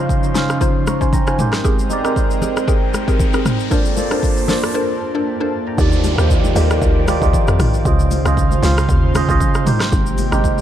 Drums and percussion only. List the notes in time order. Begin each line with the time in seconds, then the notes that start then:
0.09 kick, shaker
0.23 shaker
0.35 snare, high conga, shaker
0.50 cross-stick, shaker
0.61 kick, shaker
0.87 cross-stick, high conga, shaker
1.01 kick, shaker
1.13 kick, low conga, shaker
1.27 cross-stick, shaker
1.39 mid tom, high conga, shaker
1.53 cross-stick, snare, shaker
1.65 kick, shaker
1.79 shaker
1.90 high conga, shaker
2.05 cross-stick, shaker
2.16 kick, shaker
2.31 shaker
2.42 high conga, low conga, shaker
2.57 cross-stick, shaker
2.68 kick, shaker
2.94 cross-stick, high conga, shaker
3.08 kick, shaker
3.20 kick, low conga, shaker
3.33 cross-stick, shaker
3.45 cross-stick, mid tom, high conga, shaker
3.60 shaker
3.71 kick, shaker
3.85 shaker
3.97 high conga, shaker
4.11 cross-stick, shaker
4.23 kick, shaker
4.37 shaker
4.48 snare, high conga, low conga, shaker
4.63 cross-stick, shaker
5.78 kick, shaker
5.92 shaker
6.04 open hi-hat, high conga, shaker
6.18 cross-stick, shaker
6.30 kick, shaker
6.44 high conga, shaker
6.56 open hi-hat, high conga, low conga, shaker
6.70 cross-stick, shaker
6.82 kick, shaker
7.08 cross-stick, open hi-hat, high conga, shaker
7.22 kick, shaker
7.33 kick, low conga, shaker
7.47 cross-stick, shaker
7.60 cross-stick, mid tom, open hi-hat, high conga, shaker
7.74 shaker
7.85 kick, shaker
7.99 shaker
8.11 open hi-hat, high conga, shaker
8.25 cross-stick, shaker
8.37 kick, shaker
8.51 high conga, shaker
8.63 snare, open hi-hat, high conga, shaker
8.78 cross-stick, shaker
8.89 kick, shaker
9.15 cross-stick, open hi-hat, high conga, shaker
9.29 kick, shaker
9.40 kick, low conga, shaker
9.54 cross-stick, shaker
9.67 mid tom, open hi-hat, high conga, shaker
9.80 cross-stick, snare, shaker
9.92 kick, shaker
10.06 shaker
10.18 open hi-hat, high conga, shaker
10.32 cross-stick, shaker
10.44 kick, shaker
10.58 high conga